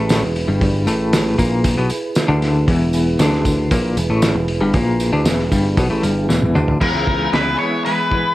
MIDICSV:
0, 0, Header, 1, 8, 480
1, 0, Start_track
1, 0, Tempo, 517241
1, 567, Time_signature, 4, 2, 24, 8
1, 7744, End_track
2, 0, Start_track
2, 0, Title_t, "Lead electric guitar"
2, 0, Program_c, 0, 29
2, 6325, Note_on_c, 0, 70, 88
2, 6772, Note_off_c, 0, 70, 0
2, 6807, Note_on_c, 0, 71, 87
2, 7030, Note_off_c, 0, 71, 0
2, 7039, Note_on_c, 0, 73, 98
2, 7267, Note_off_c, 0, 73, 0
2, 7284, Note_on_c, 0, 71, 84
2, 7744, Note_off_c, 0, 71, 0
2, 7744, End_track
3, 0, Start_track
3, 0, Title_t, "Tonewheel organ"
3, 0, Program_c, 1, 16
3, 0, Note_on_c, 1, 64, 56
3, 0, Note_on_c, 1, 68, 65
3, 0, Note_on_c, 1, 71, 73
3, 6283, Note_off_c, 1, 64, 0
3, 6285, Note_off_c, 1, 71, 0
3, 6287, Note_off_c, 1, 68, 0
3, 6326, Note_on_c, 1, 76, 58
3, 6327, Note_on_c, 1, 80, 68
3, 6328, Note_on_c, 1, 59, 53
3, 6328, Note_on_c, 1, 68, 62
3, 7744, Note_off_c, 1, 59, 0
3, 7744, Note_off_c, 1, 68, 0
3, 7744, Note_off_c, 1, 76, 0
3, 7744, Note_off_c, 1, 80, 0
3, 7744, End_track
4, 0, Start_track
4, 0, Title_t, "Clean electric guitar"
4, 0, Program_c, 2, 27
4, 0, Note_on_c, 2, 45, 95
4, 203, Note_off_c, 2, 45, 0
4, 211, Note_on_c, 2, 40, 67
4, 401, Note_off_c, 2, 40, 0
4, 447, Note_on_c, 2, 43, 92
4, 799, Note_off_c, 2, 43, 0
4, 808, Note_on_c, 2, 45, 102
4, 1279, Note_off_c, 2, 45, 0
4, 1285, Note_on_c, 2, 46, 97
4, 1636, Note_off_c, 2, 46, 0
4, 1647, Note_on_c, 2, 47, 96
4, 1758, Note_off_c, 2, 47, 0
4, 2119, Note_on_c, 2, 50, 102
4, 2472, Note_off_c, 2, 50, 0
4, 2484, Note_on_c, 2, 40, 99
4, 2954, Note_off_c, 2, 40, 0
4, 2965, Note_on_c, 2, 50, 93
4, 3434, Note_off_c, 2, 50, 0
4, 3447, Note_on_c, 2, 46, 96
4, 3676, Note_off_c, 2, 46, 0
4, 3689, Note_on_c, 2, 40, 71
4, 3803, Note_on_c, 2, 45, 98
4, 3804, Note_off_c, 2, 40, 0
4, 4033, Note_off_c, 2, 45, 0
4, 4042, Note_on_c, 2, 40, 72
4, 4232, Note_off_c, 2, 40, 0
4, 4280, Note_on_c, 2, 43, 99
4, 4392, Note_off_c, 2, 43, 0
4, 4402, Note_on_c, 2, 46, 99
4, 4753, Note_off_c, 2, 46, 0
4, 4759, Note_on_c, 2, 50, 110
4, 4871, Note_off_c, 2, 50, 0
4, 4884, Note_on_c, 2, 40, 93
4, 5114, Note_off_c, 2, 40, 0
4, 5121, Note_on_c, 2, 43, 105
4, 5353, Note_off_c, 2, 43, 0
4, 5361, Note_on_c, 2, 47, 96
4, 5473, Note_off_c, 2, 47, 0
4, 5477, Note_on_c, 2, 45, 107
4, 5591, Note_off_c, 2, 45, 0
4, 5595, Note_on_c, 2, 43, 94
4, 5830, Note_off_c, 2, 43, 0
4, 5836, Note_on_c, 2, 40, 100
4, 6072, Note_off_c, 2, 40, 0
4, 6081, Note_on_c, 2, 50, 106
4, 6311, Note_off_c, 2, 50, 0
4, 6315, Note_on_c, 2, 52, 76
4, 6323, Note_on_c, 2, 56, 80
4, 6335, Note_on_c, 2, 59, 86
4, 6338, Note_on_c, 2, 64, 93
4, 6787, Note_off_c, 2, 52, 0
4, 6794, Note_off_c, 2, 56, 0
4, 6798, Note_on_c, 2, 52, 62
4, 6805, Note_off_c, 2, 64, 0
4, 6805, Note_on_c, 2, 56, 85
4, 6806, Note_off_c, 2, 59, 0
4, 6810, Note_on_c, 2, 59, 76
4, 6817, Note_on_c, 2, 64, 84
4, 7032, Note_off_c, 2, 64, 0
4, 7043, Note_on_c, 2, 64, 71
4, 7052, Note_off_c, 2, 59, 0
4, 7056, Note_off_c, 2, 56, 0
4, 7056, Note_on_c, 2, 59, 66
4, 7067, Note_on_c, 2, 56, 58
4, 7274, Note_off_c, 2, 52, 0
4, 7284, Note_off_c, 2, 56, 0
4, 7285, Note_on_c, 2, 52, 67
4, 7295, Note_on_c, 2, 56, 75
4, 7297, Note_off_c, 2, 64, 0
4, 7299, Note_off_c, 2, 59, 0
4, 7303, Note_on_c, 2, 59, 75
4, 7308, Note_on_c, 2, 64, 70
4, 7515, Note_off_c, 2, 64, 0
4, 7526, Note_on_c, 2, 64, 55
4, 7535, Note_off_c, 2, 59, 0
4, 7538, Note_off_c, 2, 56, 0
4, 7539, Note_on_c, 2, 59, 59
4, 7549, Note_on_c, 2, 56, 50
4, 7744, Note_off_c, 2, 52, 0
4, 7744, Note_off_c, 2, 56, 0
4, 7744, Note_off_c, 2, 59, 0
4, 7744, Note_off_c, 2, 64, 0
4, 7744, End_track
5, 0, Start_track
5, 0, Title_t, "Picked electric bass"
5, 0, Program_c, 3, 34
5, 0, Note_on_c, 3, 33, 102
5, 191, Note_off_c, 3, 33, 0
5, 207, Note_on_c, 3, 28, 77
5, 430, Note_off_c, 3, 28, 0
5, 445, Note_on_c, 3, 31, 87
5, 780, Note_off_c, 3, 31, 0
5, 804, Note_on_c, 3, 33, 97
5, 1250, Note_off_c, 3, 33, 0
5, 1281, Note_on_c, 3, 34, 90
5, 1617, Note_off_c, 3, 34, 0
5, 1652, Note_on_c, 3, 35, 88
5, 1760, Note_off_c, 3, 35, 0
5, 2126, Note_on_c, 3, 38, 96
5, 2458, Note_off_c, 3, 38, 0
5, 2484, Note_on_c, 3, 28, 88
5, 2928, Note_off_c, 3, 28, 0
5, 2962, Note_on_c, 3, 38, 99
5, 3407, Note_off_c, 3, 38, 0
5, 3444, Note_on_c, 3, 34, 91
5, 3665, Note_off_c, 3, 34, 0
5, 3685, Note_on_c, 3, 28, 93
5, 3793, Note_off_c, 3, 28, 0
5, 3803, Note_on_c, 3, 33, 97
5, 4024, Note_off_c, 3, 33, 0
5, 4042, Note_on_c, 3, 28, 88
5, 4263, Note_off_c, 3, 28, 0
5, 4285, Note_on_c, 3, 31, 91
5, 4394, Note_off_c, 3, 31, 0
5, 4400, Note_on_c, 3, 34, 90
5, 4734, Note_off_c, 3, 34, 0
5, 4757, Note_on_c, 3, 38, 94
5, 4866, Note_off_c, 3, 38, 0
5, 4872, Note_on_c, 3, 28, 89
5, 5098, Note_off_c, 3, 28, 0
5, 5119, Note_on_c, 3, 31, 93
5, 5342, Note_off_c, 3, 31, 0
5, 5356, Note_on_c, 3, 35, 87
5, 5469, Note_off_c, 3, 35, 0
5, 5489, Note_on_c, 3, 33, 92
5, 5596, Note_off_c, 3, 33, 0
5, 5600, Note_on_c, 3, 31, 110
5, 5823, Note_off_c, 3, 31, 0
5, 5845, Note_on_c, 3, 28, 95
5, 6067, Note_off_c, 3, 28, 0
5, 6082, Note_on_c, 3, 38, 94
5, 6305, Note_off_c, 3, 38, 0
5, 6321, Note_on_c, 3, 40, 82
5, 6423, Note_off_c, 3, 40, 0
5, 6441, Note_on_c, 3, 37, 86
5, 6746, Note_off_c, 3, 37, 0
5, 6804, Note_on_c, 3, 37, 95
5, 7007, Note_off_c, 3, 37, 0
5, 7744, End_track
6, 0, Start_track
6, 0, Title_t, "Muted clean electric guitar strokes"
6, 1764, Note_on_c, 9, 29, 52
6, 1856, Note_off_c, 9, 29, 0
6, 7744, End_track
7, 0, Start_track
7, 0, Title_t, "Muted picked electric bass strokes"
7, 1772, Note_on_c, 9, 29, 49
7, 1865, Note_off_c, 9, 29, 0
7, 7744, End_track
8, 0, Start_track
8, 0, Title_t, "Drums"
8, 87, Note_on_c, 9, 54, 91
8, 93, Note_on_c, 9, 46, 73
8, 97, Note_on_c, 9, 38, 102
8, 179, Note_off_c, 9, 54, 0
8, 186, Note_off_c, 9, 46, 0
8, 190, Note_off_c, 9, 38, 0
8, 333, Note_on_c, 9, 46, 54
8, 426, Note_off_c, 9, 46, 0
8, 569, Note_on_c, 9, 36, 112
8, 571, Note_on_c, 9, 46, 69
8, 662, Note_off_c, 9, 36, 0
8, 664, Note_off_c, 9, 46, 0
8, 807, Note_on_c, 9, 54, 72
8, 816, Note_on_c, 9, 46, 63
8, 900, Note_off_c, 9, 54, 0
8, 909, Note_off_c, 9, 46, 0
8, 1047, Note_on_c, 9, 46, 87
8, 1050, Note_on_c, 9, 54, 102
8, 1051, Note_on_c, 9, 38, 117
8, 1140, Note_off_c, 9, 46, 0
8, 1143, Note_off_c, 9, 38, 0
8, 1143, Note_off_c, 9, 54, 0
8, 1286, Note_on_c, 9, 36, 82
8, 1287, Note_on_c, 9, 46, 58
8, 1288, Note_on_c, 9, 54, 81
8, 1379, Note_off_c, 9, 36, 0
8, 1380, Note_off_c, 9, 46, 0
8, 1381, Note_off_c, 9, 54, 0
8, 1523, Note_on_c, 9, 46, 79
8, 1524, Note_on_c, 9, 54, 71
8, 1525, Note_on_c, 9, 36, 100
8, 1616, Note_off_c, 9, 46, 0
8, 1617, Note_off_c, 9, 54, 0
8, 1618, Note_off_c, 9, 36, 0
8, 1759, Note_on_c, 9, 54, 78
8, 1764, Note_on_c, 9, 46, 55
8, 1852, Note_off_c, 9, 54, 0
8, 1857, Note_off_c, 9, 46, 0
8, 1997, Note_on_c, 9, 54, 92
8, 2004, Note_on_c, 9, 46, 75
8, 2007, Note_on_c, 9, 38, 103
8, 2090, Note_off_c, 9, 54, 0
8, 2096, Note_off_c, 9, 46, 0
8, 2100, Note_off_c, 9, 38, 0
8, 2248, Note_on_c, 9, 46, 57
8, 2251, Note_on_c, 9, 38, 31
8, 2340, Note_off_c, 9, 46, 0
8, 2344, Note_off_c, 9, 38, 0
8, 2487, Note_on_c, 9, 36, 108
8, 2488, Note_on_c, 9, 46, 74
8, 2579, Note_off_c, 9, 36, 0
8, 2581, Note_off_c, 9, 46, 0
8, 2719, Note_on_c, 9, 54, 72
8, 2727, Note_on_c, 9, 46, 58
8, 2812, Note_off_c, 9, 54, 0
8, 2820, Note_off_c, 9, 46, 0
8, 2961, Note_on_c, 9, 54, 106
8, 2965, Note_on_c, 9, 46, 77
8, 2969, Note_on_c, 9, 38, 103
8, 3054, Note_off_c, 9, 54, 0
8, 3058, Note_off_c, 9, 46, 0
8, 3062, Note_off_c, 9, 38, 0
8, 3088, Note_on_c, 9, 38, 32
8, 3181, Note_off_c, 9, 38, 0
8, 3202, Note_on_c, 9, 46, 58
8, 3203, Note_on_c, 9, 36, 80
8, 3205, Note_on_c, 9, 54, 81
8, 3294, Note_off_c, 9, 46, 0
8, 3296, Note_off_c, 9, 36, 0
8, 3298, Note_off_c, 9, 54, 0
8, 3441, Note_on_c, 9, 46, 72
8, 3443, Note_on_c, 9, 36, 117
8, 3445, Note_on_c, 9, 54, 73
8, 3534, Note_off_c, 9, 46, 0
8, 3536, Note_off_c, 9, 36, 0
8, 3538, Note_off_c, 9, 54, 0
8, 3683, Note_on_c, 9, 54, 80
8, 3684, Note_on_c, 9, 46, 56
8, 3775, Note_off_c, 9, 54, 0
8, 3776, Note_off_c, 9, 46, 0
8, 3916, Note_on_c, 9, 54, 105
8, 3918, Note_on_c, 9, 46, 73
8, 3921, Note_on_c, 9, 38, 107
8, 4009, Note_off_c, 9, 54, 0
8, 4011, Note_off_c, 9, 46, 0
8, 4014, Note_off_c, 9, 38, 0
8, 4158, Note_on_c, 9, 46, 49
8, 4251, Note_off_c, 9, 46, 0
8, 4396, Note_on_c, 9, 46, 66
8, 4399, Note_on_c, 9, 36, 105
8, 4402, Note_on_c, 9, 54, 31
8, 4489, Note_off_c, 9, 46, 0
8, 4492, Note_off_c, 9, 36, 0
8, 4495, Note_off_c, 9, 54, 0
8, 4639, Note_on_c, 9, 54, 78
8, 4641, Note_on_c, 9, 46, 54
8, 4732, Note_off_c, 9, 54, 0
8, 4734, Note_off_c, 9, 46, 0
8, 4876, Note_on_c, 9, 46, 77
8, 4877, Note_on_c, 9, 54, 99
8, 4880, Note_on_c, 9, 38, 117
8, 4969, Note_off_c, 9, 46, 0
8, 4970, Note_off_c, 9, 54, 0
8, 4973, Note_off_c, 9, 38, 0
8, 5004, Note_on_c, 9, 38, 36
8, 5097, Note_off_c, 9, 38, 0
8, 5120, Note_on_c, 9, 36, 85
8, 5121, Note_on_c, 9, 54, 79
8, 5122, Note_on_c, 9, 46, 61
8, 5213, Note_off_c, 9, 36, 0
8, 5214, Note_off_c, 9, 54, 0
8, 5215, Note_off_c, 9, 46, 0
8, 5357, Note_on_c, 9, 46, 78
8, 5358, Note_on_c, 9, 36, 114
8, 5360, Note_on_c, 9, 54, 66
8, 5450, Note_off_c, 9, 46, 0
8, 5451, Note_off_c, 9, 36, 0
8, 5453, Note_off_c, 9, 54, 0
8, 5599, Note_on_c, 9, 46, 61
8, 5603, Note_on_c, 9, 54, 77
8, 5692, Note_off_c, 9, 46, 0
8, 5696, Note_off_c, 9, 54, 0
8, 5848, Note_on_c, 9, 54, 89
8, 5849, Note_on_c, 9, 38, 63
8, 5941, Note_off_c, 9, 54, 0
8, 5942, Note_off_c, 9, 38, 0
8, 5961, Note_on_c, 9, 48, 63
8, 6054, Note_off_c, 9, 48, 0
8, 6083, Note_on_c, 9, 45, 75
8, 6088, Note_on_c, 9, 54, 29
8, 6176, Note_off_c, 9, 45, 0
8, 6181, Note_off_c, 9, 54, 0
8, 6201, Note_on_c, 9, 43, 90
8, 6294, Note_off_c, 9, 43, 0
8, 6323, Note_on_c, 9, 36, 99
8, 6323, Note_on_c, 9, 49, 84
8, 6416, Note_off_c, 9, 36, 0
8, 6416, Note_off_c, 9, 49, 0
8, 6565, Note_on_c, 9, 36, 84
8, 6658, Note_off_c, 9, 36, 0
8, 6806, Note_on_c, 9, 46, 49
8, 6810, Note_on_c, 9, 38, 104
8, 6899, Note_off_c, 9, 46, 0
8, 6903, Note_off_c, 9, 38, 0
8, 7293, Note_on_c, 9, 46, 47
8, 7386, Note_off_c, 9, 46, 0
8, 7531, Note_on_c, 9, 36, 81
8, 7624, Note_off_c, 9, 36, 0
8, 7744, End_track
0, 0, End_of_file